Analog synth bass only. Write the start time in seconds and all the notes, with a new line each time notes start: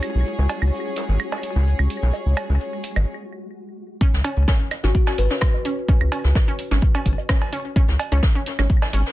0.15 B1
0.38 C#2
0.62 C#2
1.09 G#1
1.56 C#2
1.79 C#2
2.03 B1
2.26 C#2
2.49 C#2
2.96 G#1
4.13 C#2
4.37 C#2
4.84 G#1
5.18 G#1
6.01 C#2
6.24 C#2
6.71 G#1
7.06 G#1
7.88 C#2
8.12 C#2
8.59 G#1
8.93 G#1